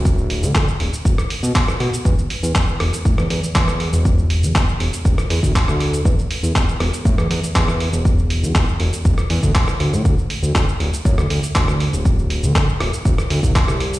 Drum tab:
HH |--o---o---o---o-|--o---o---o---o-|--o---o---o---o-|--o---o---o---o-|
SH |xx-xxx-xxx-xxx-x|xx-xxx-xxx-xxx-x|xx-xxx-xxx-xxx-x|xx-xxx-xxx-xxx-x|
CP |----x-------x---|----x-------x---|----x-------x---|----x-------x---|
SD |---------r---r--|------r--r---r--|---------r---r--|------r--r---r--|
BD |o---o---o---o---|o---o---o---o---|o---o---o--oo---|o---o---o---o---|

HH |--o---o---o---o-|--o---o---o---o-|--o---o---o---o-|
SH |xx-xxx-xxx-xxx-x|xx-xxx-xxx-xxx-x|xx-xxx-xxx-xxx-x|
CP |----x-------x---|----x-------x---|----x-------x---|
SD |---------r---r--|---------r---r--|------r--r---r--|
BD |o---o---o--oo---|o---o---o---o---|o---o---o--oo---|